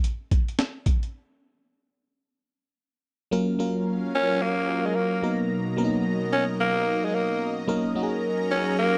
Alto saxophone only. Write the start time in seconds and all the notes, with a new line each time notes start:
4.15 C#4
4.42 A#3
4.86 G#3
4.96 A#3
6.33 C#4
6.61 A#3
7.05 G#3
7.15 A#3
8.51 C#4
8.79 A#3